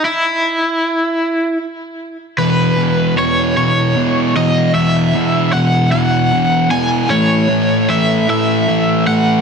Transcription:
<<
  \new Staff \with { instrumentName = "Overdriven electric guitar" } { \time 6/8 \key a \lydian \tempo 4. = 51 e'2 r4 | b'4 cis''8 cis''4 dis''8 | e''4 fis''8 fis''4 gis''8 | cis''4 e''8 e''4 fis''8 | }
  \new Staff \with { instrumentName = "Distorted electric guitar" } { \clef bass \time 6/8 \key a \lydian r2. | <e, b, e>8 <e, b, e>8 <e, b, e>8 <e, b, e>8 <e, b, e>8 <e, b, e>8 | <e, b, e>8 <e, b, e>8 <e, b, e>8 <e, b, e>8 <e, b, e>8 <e, b, e>8 | <a, e a>8 <a, e a>8 <a, e a>8 <a, e a>8 <a, e a>8 <a, e a>8 | }
>>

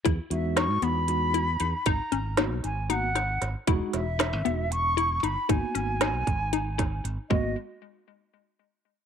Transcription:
<<
  \new Staff \with { instrumentName = "Flute" } { \time 7/8 \key gis \minor \tempo 4 = 116 r8 e''8 cis'''8 b''2 | ais''4 r8 gis''8 fis''4 r8 | r8 e''4. cis'''4 b''8 | gis''2. r8 |
dis''8 r2. | }
  \new Staff \with { instrumentName = "Synth arpeggio sound" } { \time 7/8 \key gis \minor e'4 dis'8 b4 e'8 dis'8 | dis'8 cis'8 dis'4 dis'8 dis'4 | e'4 dis'8 b4 e'8 dis'8 | dis'8 cis'8 dis'4 dis'8 dis'4 |
gis8 r2. | }
  \new Staff \with { instrumentName = "Tine electric piano" } { \time 7/8 \key gis \minor r8 <gis dis' fis'>4. <gis dis' fis'>8 r4 | r4 <ais b fis'>8 r8 <ais b fis'>8 r4 | <gis dis' fis'>8 r4 <gis dis' fis'>8 r4. | <ais b fis'>4. r2 |
<ais b fis'>8 r2. | }
  \new Staff \with { instrumentName = "Fingered electric bass" } { \clef bass \time 7/8 \key gis \minor e,16 r16 e,8. gis,16 e,4. e,16 r16 | gis,,16 r16 gis,,8. b,,16 gis,,4. gis,,16 r16 | e,,16 r16 e,,8. gis,,16 e,,4. g,,16 r16 | gis,,16 r16 gis,,8. b,,16 gis,,4. gis,,16 r16 |
gis,,8 r2. | }
  \new DrumStaff \with { instrumentName = "Drums" } \drummode { \time 7/8 <hh bd>8 hh8 <hh sn>8 hh8 hh8 hh8 hh8 | <hh bd>8 hh8 <hh sn>8 hh8 hh8 <hh sn>8 <hh sn>8 | <hh bd>8 <hh sn>8 <hh sn>8 hh8 hh8 hh8 hh8 | <hh bd>8 hh8 <hh sn>8 <hh bd>8 hh8 <hh bd sn>8 hh8 |
bd4 r4 r4. | }
>>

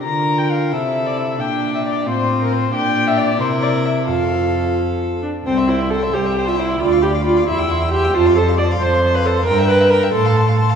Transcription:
<<
  \new Staff \with { instrumentName = "Violin" } { \time 6/8 \key f \major \tempo 4. = 90 bes''8. g''16 f''8 e''8. d''16 e''8 | g''8. e''16 d''8 c''8. bes'16 c''8 | g''8. e''16 d''8 c''8 d''8 e''8 | f''4. r4. |
\key c \major g''16 c'''16 g''16 c'''16 g''16 c'''16 g''16 c'''16 g''16 c'''16 g''16 c'''16 | b''16 d'''16 b''16 d'''16 b''16 d'''16 c'''16 e'''16 c'''16 e'''16 c'''16 e'''16 | a''16 c'''16 a''16 c'''16 a''16 c'''16 a''16 c'''16 a''16 c'''16 a''16 c'''16 | bes''16 g''16 bes''16 g''16 bes''16 g''16 c'''16 a''16 c'''16 a''16 c'''16 a''16 | }
  \new Staff \with { instrumentName = "Violin" } { \time 6/8 \key f \major bes'4. a'4. | g'4. f'4. | g'4. bes'4. | a'2~ a'8 r8 |
\key c \major c''16 e''16 c''16 e''16 c''16 e''16 c''16 e''16 c''16 e''16 c''16 e''16 | d''16 f''16 d''16 f''16 d''16 f''16 e''16 g''16 e''16 g''16 e''16 g''16 | c''16 f''16 c''16 f''16 c''16 f''16 c''16 f''16 c''16 f''16 c''16 f''16 | g''16 e''16 g''16 e''16 g''16 e''16 a''16 f''16 a''16 f''16 a''16 f''16 | }
  \new Staff \with { instrumentName = "Viola" } { \time 6/8 \key f \major f'4. e'4. | d'4. c'4. | d'4. e'4. | f'2~ f'8 d'8 |
\key c \major c'8 e'8 a'8 g'8. f'16 e'8 | f'8 g'8 f'8 e'4 g'8 | f'8 a'8 d''8 c''8. b'16 a'8 | bes'8 b'8 bes'8 a'4 r8 | }
  \new Staff \with { instrumentName = "Cello" } { \clef bass \time 6/8 \key f \major d4. c4. | bes,4. a,4. | bes,4. c4. | f,2~ f,8 r8 |
\key c \major c,4. c,4. | d,4. e,4. | f,4. f,4. | g,4. a,4. | }
>>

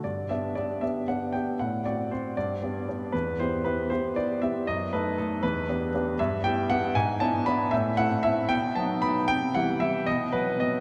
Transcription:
\new Staff \with { instrumentName = "Grand piano" } { \time 6/8 \key g \major \tempo 4. = 78 << { d''8 e''8 d''8 e''8 fis''8 g''8 | fis''8 d''8 c''8 d''4. | b'8 c''8 b'8 c''8 d''8 e''8 | dis''8 b'8 a'8 b'4. |
\key e \minor e''8 g''8 fis''8 gis''8 a''8 b''8 | e''8 fis''8 e''8 g''8 a''8 b''8 | g''8 fis''8 e''8 dis''8 b'8 dis''8 | } \\ { g,8 <b d' g'>8 <b d' g'>8 <b d' g'>8 <b d' g'>8 <b d' g'>8 | a,8 <c' fis'>8 <c' fis'>8 g,8 <b d' g'>8 <b d' g'>8 | e,8 <b e' g'>8 <b e' g'>8 <b e' g'>8 <b e' g'>8 <b e' g'>8 | fis,8 <a dis' a'>8 <a dis'>8 e,8 <b d' g'>8 <b d' g'>8 |
g,8 <b e' g'>8 <b e' g'>8 gis,8 <b d' e'>8 <b d' e'>8 | a,8 <a c' e'>8 <a c' e'>8 b,8 <fis b dis'>8 <fis b dis'>8 | c8 <e g e'>8 <e g e'>8 b,8 <fis b>8 <fis b b'>8 | } >> }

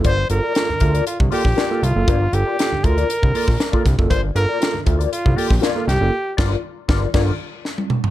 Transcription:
<<
  \new Staff \with { instrumentName = "Clean electric guitar" } { \time 4/4 \key g \minor \tempo 4 = 118 <f' bes' d''>16 r8 <f' bes' d''>16 r8 <f' bes' e''>16 <f' bes' d''>16 r8 <f' bes' d''>16 r16 <f' bes' d''>8 r8 | <f' bes' d''>16 r8 <f' bes' d''>16 r8 <f' bes' d''>16 <f' bes' d''>16 r8 <f' bes' d''>16 r8 <f' bes' d''>16 r8 | <f' bes' d''>16 r8 <f' bes' d''>16 r8 <f' bes' e''>16 <f' bes' d''>16 r8 <f' bes' d''>16 r16 <f' bes' d''>8 r8 | r8 <f' bes' d''>8 r8 <f' bes' d''>8 <f' bes' d''>8 r4. | }
  \new Staff \with { instrumentName = "Trumpet" } { \time 4/4 \key g \minor c''8 bes'4. f'8 g'4 f'8~ | f'8 g'4 bes'2 r8 | c''8 bes'4 r8 f'8 g'16. g'32 f'8 g'8~ | g'8 r2. r8 | }
  \new Staff \with { instrumentName = "Tine electric piano" } { \time 4/4 \key g \minor <g, d>16 r16 <f' a'>16 r16 <f' a'>16 <g, d>16 <f' a'>16 r16 <f' a'>16 <g, d>16 <bes f' a'>16 r8 <bes f' a'>16 <g, d>16 <bes f' a'>16 | <g, d>16 r16 <f' a'>16 r16 <f' a'>16 <g, d>16 <f' a'>16 r16 <f' a'>16 <g, d>16 <bes f' a'>16 r8 <bes f' a'>16 <g, d>16 <bes f' a'>16 | <g, d>16 r16 <f' a'>16 r16 <f' a'>16 <g, d>16 <f' a'>16 r16 <f' a'>16 <g, d>16 <bes f' a'>16 r8 <bes f' a'>16 <g, d>16 <bes f' a'>16 | r2 <g, d>8 r4. | }
  \new Staff \with { instrumentName = "Analog synth bass" } { \clef bass \time 4/4 \key g \minor g,,8 g,,16 r8 d,16 d,8 r16 c,16 r16 bes,,16 r8 c,16 fis,,16 | g,,8 g,,16 r8 d,16 d,8 r16 c,16 r16 bes,,16 r8 c,16 fis,,16 | g,,8 g,,16 r8 d,16 d,8 r16 c,16 r16 bes,,16 r8 c,16 fis,,16 | r8 g,,8 r8 g,,8 g,,8 r4. | }
  \new DrumStaff \with { instrumentName = "Drums" } \drummode { \time 4/4 <hh bd>8 hh8 <hh sn>8 <hh bd>16 hh16 hh16 bd16 hho16 <bd sn>16 <hh sn>8 hh8 | <hh bd>8 hh8 <hh sn>8 <hh bd>16 hh16 hh16 bd16 hho16 <bd sn>16 <hh sn>16 bd16 <hh bd sn>16 bd16 | <hh bd>8 hh8 <hh sn>8 <hh bd>16 hh16 hh16 bd16 hho16 <bd sn>16 <hh sn>8 <hh sn>8 | r8 <cymc bd sn>8 r8 <bd sn>8 <cymc bd sn>4 sn16 tommh16 toml16 tomfh16 | }
>>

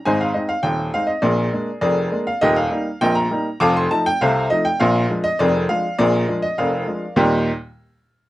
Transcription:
<<
  \new Staff \with { instrumentName = "Upright piano" } { \time 2/4 \key ees \major \tempo 4 = 101 <c'' ees'' aes''>16 f''16 ees''16 f''16 g''8 f''16 ees''16 | <aes' bes' d''>4 <aes' bes' d''>8. f''16 | <g' bes' ees''>16 f''8. <bes' ees'' g''>16 bes''8. | <f'' a'' d'''>16 c'''16 a''16 g''16 <a' c'' f''>8 ees''16 g''16 |
<bes' d'' f''>8. ees''16 <aes' bes' d''>8 f''8 | <aes' bes' d''>8. ees''16 <bes' d'' f''>4 | <ees, bes, g bes ees' g' ees''>8 r4. | }
  \new Staff \with { instrumentName = "Upright piano" } { \clef bass \time 2/4 \key ees \major <aes,, aes,>8 <aes c' ees'>8 <ees,, ees,>8 <aes c' ees'>8 | <bes,, bes,>8 <aes bes d'>8 <f,, f,>8 <aes bes d'>8 | <ees,, ees,>8 <g bes ees'>8 <bes,, bes,>8 <g bes ees'>8 | <f,, f,>8 <f a ees'>8 <c, c>8 <f a ees'>8 |
<bes,, bes,>8 <f aes d'>8 <f,, f,>8 <f aes d'>8 | <bes,, bes,>8 <f aes d'>8 <f,, f,>8 <f aes d'>8 | r2 | }
>>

